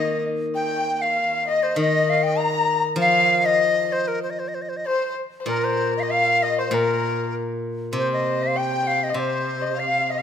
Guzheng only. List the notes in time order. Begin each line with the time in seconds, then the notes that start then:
Already playing: D#3 A#3 D#4
1.76 D#3
2.96 F3
5.46 A#2
6.71 A#2
7.93 C3
9.14 C3